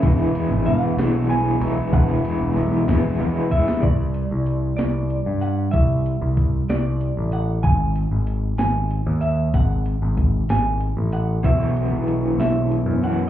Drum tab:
RD |x-x-x-x-x-x-|x-x-x-x-x-x-|------------|------------|
HH |------------|------------|x-x-x-x-x-x-|x-x-x-x-x-x-|
SD |------o-----|------o----o|------o-----|------o-----|
BD |o-----------|o-----o---o-|o-----------|o---o-------|

RD |------------|------------|------------|
HH |x-x-x-x-x-x-|x-x-x-x-x-x-|x-x-x-x-x-x-|
SD |------o-----|------o-----|------o-----|
BD |o-----------|o---o-------|o-----------|